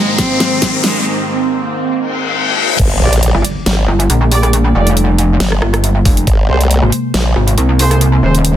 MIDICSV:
0, 0, Header, 1, 11, 480
1, 0, Start_track
1, 0, Tempo, 434783
1, 1165, Time_signature, 4, 2, 24, 8
1, 9460, End_track
2, 0, Start_track
2, 0, Title_t, "Ambient pad"
2, 0, Program_c, 0, 92
2, 0, Note_on_c, 0, 56, 84
2, 0, Note_on_c, 0, 67, 80
2, 0, Note_on_c, 0, 72, 67
2, 0, Note_on_c, 0, 77, 72
2, 0, Note_on_c, 0, 82, 71
2, 1164, Note_off_c, 0, 56, 0
2, 1164, Note_off_c, 0, 67, 0
2, 1164, Note_off_c, 0, 72, 0
2, 1164, Note_off_c, 0, 77, 0
2, 1164, Note_off_c, 0, 82, 0
2, 9460, End_track
3, 0, Start_track
3, 0, Title_t, "Brass ensemble"
3, 0, Program_c, 1, 61
3, 3324, Note_on_c, 1, 58, 76
3, 3324, Note_on_c, 1, 67, 69
3, 3324, Note_on_c, 1, 74, 82
3, 3460, Note_off_c, 1, 58, 0
3, 3460, Note_off_c, 1, 67, 0
3, 3460, Note_off_c, 1, 74, 0
3, 4763, Note_on_c, 1, 67, 82
3, 4763, Note_on_c, 1, 74, 98
3, 4764, Note_on_c, 1, 58, 90
3, 4970, Note_off_c, 1, 58, 0
3, 4970, Note_off_c, 1, 67, 0
3, 4970, Note_off_c, 1, 74, 0
3, 5243, Note_on_c, 1, 58, 75
3, 5243, Note_on_c, 1, 67, 67
3, 5243, Note_on_c, 1, 74, 84
3, 5380, Note_off_c, 1, 58, 0
3, 5380, Note_off_c, 1, 67, 0
3, 5380, Note_off_c, 1, 74, 0
3, 7163, Note_on_c, 1, 58, 76
3, 7163, Note_on_c, 1, 68, 72
3, 7163, Note_on_c, 1, 72, 84
3, 7300, Note_off_c, 1, 58, 0
3, 7300, Note_off_c, 1, 68, 0
3, 7300, Note_off_c, 1, 72, 0
3, 8604, Note_on_c, 1, 58, 89
3, 8604, Note_on_c, 1, 68, 83
3, 8604, Note_on_c, 1, 72, 95
3, 8810, Note_off_c, 1, 58, 0
3, 8810, Note_off_c, 1, 68, 0
3, 8810, Note_off_c, 1, 72, 0
3, 9084, Note_on_c, 1, 58, 75
3, 9084, Note_on_c, 1, 68, 68
3, 9084, Note_on_c, 1, 72, 85
3, 9220, Note_off_c, 1, 58, 0
3, 9220, Note_off_c, 1, 68, 0
3, 9220, Note_off_c, 1, 72, 0
3, 9460, End_track
4, 0, Start_track
4, 0, Title_t, "Cello"
4, 0, Program_c, 2, 42
4, 0, Note_on_c, 2, 56, 93
4, 186, Note_off_c, 2, 56, 0
4, 204, Note_on_c, 2, 60, 101
4, 836, Note_off_c, 2, 60, 0
4, 925, Note_on_c, 2, 56, 90
4, 1147, Note_off_c, 2, 56, 0
4, 9460, End_track
5, 0, Start_track
5, 0, Title_t, "Analog synth pad"
5, 0, Program_c, 3, 89
5, 0, Note_on_c, 3, 44, 89
5, 0, Note_on_c, 3, 51, 76
5, 0, Note_on_c, 3, 58, 80
5, 0, Note_on_c, 3, 60, 99
5, 3040, Note_off_c, 3, 58, 0
5, 3046, Note_off_c, 3, 44, 0
5, 3046, Note_off_c, 3, 51, 0
5, 3046, Note_off_c, 3, 60, 0
5, 3084, Note_on_c, 3, 58, 102
5, 3085, Note_on_c, 3, 50, 87
5, 3085, Note_on_c, 3, 55, 79
5, 6886, Note_off_c, 3, 50, 0
5, 6886, Note_off_c, 3, 55, 0
5, 6924, Note_on_c, 3, 56, 78
5, 6925, Note_on_c, 3, 48, 87
5, 9460, Note_off_c, 3, 48, 0
5, 9460, Note_off_c, 3, 56, 0
5, 9460, Note_off_c, 3, 58, 0
5, 9460, End_track
6, 0, Start_track
6, 0, Title_t, "Wobble bass"
6, 0, Program_c, 4, 39
6, 3084, Note_on_c, 4, 31, 97
6, 3307, Note_off_c, 4, 31, 0
6, 3324, Note_on_c, 4, 34, 103
6, 3673, Note_off_c, 4, 34, 0
6, 4044, Note_on_c, 4, 32, 102
6, 4266, Note_off_c, 4, 32, 0
6, 5964, Note_on_c, 4, 31, 103
6, 6186, Note_off_c, 4, 31, 0
6, 6924, Note_on_c, 4, 32, 96
6, 7146, Note_off_c, 4, 32, 0
6, 7164, Note_on_c, 4, 36, 104
6, 7513, Note_off_c, 4, 36, 0
6, 7884, Note_on_c, 4, 34, 99
6, 8107, Note_off_c, 4, 34, 0
6, 9460, End_track
7, 0, Start_track
7, 0, Title_t, "Wobble bass"
7, 0, Program_c, 5, 39
7, 3694, Note_on_c, 5, 31, 103
7, 3787, Note_off_c, 5, 31, 0
7, 4284, Note_on_c, 5, 31, 101
7, 4506, Note_off_c, 5, 31, 0
7, 4524, Note_on_c, 5, 34, 99
7, 5226, Note_off_c, 5, 34, 0
7, 5244, Note_on_c, 5, 29, 96
7, 5946, Note_off_c, 5, 29, 0
7, 6204, Note_on_c, 5, 31, 102
7, 6666, Note_off_c, 5, 31, 0
7, 6684, Note_on_c, 5, 29, 99
7, 6906, Note_off_c, 5, 29, 0
7, 7534, Note_on_c, 5, 32, 98
7, 7627, Note_off_c, 5, 32, 0
7, 8124, Note_on_c, 5, 32, 103
7, 8347, Note_off_c, 5, 32, 0
7, 8364, Note_on_c, 5, 36, 103
7, 9067, Note_off_c, 5, 36, 0
7, 9084, Note_on_c, 5, 27, 96
7, 9460, Note_off_c, 5, 27, 0
7, 9460, End_track
8, 0, Start_track
8, 0, Title_t, "Impact"
8, 0, Program_c, 6, 103
8, 3084, Note_on_c, 6, 60, 71
8, 5004, Note_off_c, 6, 60, 0
8, 9460, End_track
9, 0, Start_track
9, 0, Title_t, "Reverse cymbal"
9, 0, Program_c, 7, 119
9, 2124, Note_on_c, 7, 60, 77
9, 3084, Note_off_c, 7, 60, 0
9, 9460, End_track
10, 0, Start_track
10, 0, Title_t, "Riser"
10, 0, Program_c, 8, 103
10, 0, Note_on_c, 8, 60, 74
10, 1164, Note_off_c, 8, 60, 0
10, 9460, End_track
11, 0, Start_track
11, 0, Title_t, "Drums"
11, 204, Note_on_c, 9, 36, 99
11, 204, Note_on_c, 9, 38, 90
11, 204, Note_on_c, 9, 42, 86
11, 314, Note_off_c, 9, 38, 0
11, 314, Note_off_c, 9, 42, 0
11, 315, Note_off_c, 9, 36, 0
11, 444, Note_on_c, 9, 38, 87
11, 444, Note_on_c, 9, 42, 55
11, 554, Note_off_c, 9, 38, 0
11, 554, Note_off_c, 9, 42, 0
11, 684, Note_on_c, 9, 36, 103
11, 684, Note_on_c, 9, 38, 82
11, 684, Note_on_c, 9, 42, 79
11, 795, Note_off_c, 9, 36, 0
11, 795, Note_off_c, 9, 38, 0
11, 795, Note_off_c, 9, 42, 0
11, 924, Note_on_c, 9, 38, 85
11, 924, Note_on_c, 9, 46, 85
11, 1034, Note_off_c, 9, 38, 0
11, 1034, Note_off_c, 9, 46, 0
11, 3084, Note_on_c, 9, 36, 115
11, 3084, Note_on_c, 9, 42, 85
11, 3084, Note_on_c, 9, 49, 110
11, 3195, Note_off_c, 9, 36, 0
11, 3195, Note_off_c, 9, 42, 0
11, 3195, Note_off_c, 9, 49, 0
11, 3453, Note_on_c, 9, 42, 56
11, 3564, Note_off_c, 9, 42, 0
11, 3564, Note_on_c, 9, 42, 86
11, 3674, Note_off_c, 9, 42, 0
11, 3804, Note_on_c, 9, 42, 58
11, 3914, Note_off_c, 9, 42, 0
11, 4044, Note_on_c, 9, 38, 127
11, 4044, Note_on_c, 9, 42, 92
11, 4154, Note_off_c, 9, 38, 0
11, 4154, Note_off_c, 9, 42, 0
11, 4413, Note_on_c, 9, 42, 53
11, 4524, Note_off_c, 9, 42, 0
11, 4524, Note_on_c, 9, 42, 81
11, 4634, Note_off_c, 9, 42, 0
11, 4764, Note_on_c, 9, 46, 93
11, 4874, Note_off_c, 9, 46, 0
11, 4894, Note_on_c, 9, 37, 51
11, 4894, Note_on_c, 9, 42, 56
11, 5004, Note_off_c, 9, 37, 0
11, 5004, Note_off_c, 9, 42, 0
11, 5004, Note_on_c, 9, 42, 88
11, 5114, Note_off_c, 9, 42, 0
11, 5374, Note_on_c, 9, 42, 57
11, 5484, Note_off_c, 9, 42, 0
11, 5484, Note_on_c, 9, 42, 82
11, 5595, Note_off_c, 9, 42, 0
11, 5724, Note_on_c, 9, 42, 56
11, 5834, Note_off_c, 9, 42, 0
11, 5964, Note_on_c, 9, 38, 127
11, 5964, Note_on_c, 9, 42, 88
11, 6074, Note_off_c, 9, 38, 0
11, 6074, Note_off_c, 9, 42, 0
11, 6093, Note_on_c, 9, 37, 74
11, 6204, Note_off_c, 9, 37, 0
11, 6204, Note_on_c, 9, 37, 77
11, 6314, Note_off_c, 9, 37, 0
11, 6333, Note_on_c, 9, 37, 75
11, 6333, Note_on_c, 9, 42, 55
11, 6444, Note_off_c, 9, 37, 0
11, 6444, Note_off_c, 9, 42, 0
11, 6444, Note_on_c, 9, 42, 84
11, 6555, Note_off_c, 9, 42, 0
11, 6684, Note_on_c, 9, 36, 110
11, 6684, Note_on_c, 9, 46, 89
11, 6794, Note_off_c, 9, 36, 0
11, 6794, Note_off_c, 9, 46, 0
11, 6813, Note_on_c, 9, 42, 57
11, 6924, Note_off_c, 9, 42, 0
11, 6924, Note_on_c, 9, 36, 120
11, 6924, Note_on_c, 9, 42, 83
11, 7034, Note_off_c, 9, 36, 0
11, 7034, Note_off_c, 9, 42, 0
11, 7293, Note_on_c, 9, 42, 55
11, 7404, Note_off_c, 9, 42, 0
11, 7404, Note_on_c, 9, 42, 82
11, 7514, Note_off_c, 9, 42, 0
11, 7644, Note_on_c, 9, 42, 59
11, 7754, Note_off_c, 9, 42, 0
11, 7884, Note_on_c, 9, 38, 127
11, 7884, Note_on_c, 9, 42, 84
11, 7994, Note_off_c, 9, 38, 0
11, 7994, Note_off_c, 9, 42, 0
11, 8253, Note_on_c, 9, 42, 54
11, 8364, Note_off_c, 9, 42, 0
11, 8364, Note_on_c, 9, 42, 78
11, 8474, Note_off_c, 9, 42, 0
11, 8604, Note_on_c, 9, 46, 87
11, 8714, Note_off_c, 9, 46, 0
11, 8733, Note_on_c, 9, 37, 52
11, 8733, Note_on_c, 9, 42, 55
11, 8844, Note_off_c, 9, 37, 0
11, 8844, Note_off_c, 9, 42, 0
11, 8844, Note_on_c, 9, 42, 79
11, 8955, Note_off_c, 9, 42, 0
11, 9214, Note_on_c, 9, 42, 53
11, 9324, Note_off_c, 9, 42, 0
11, 9324, Note_on_c, 9, 42, 77
11, 9435, Note_off_c, 9, 42, 0
11, 9460, End_track
0, 0, End_of_file